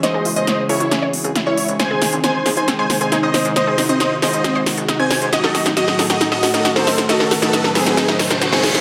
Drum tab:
HH |x-oxx-oxx-oxx-ox|x-oxx-oxx-oxx-ox|x-oxx-oxx-oxx-ox|x-oxx-oxx-oxx-ox|
SD |o---o---o---o---|o-o-o-o-o-o-o-o-|o-o-o-o-o-o-o-o-|oooooooooooooooo|

HH |x-oxx-oxx-oxx-ox|
SD |oooooooooooooooo|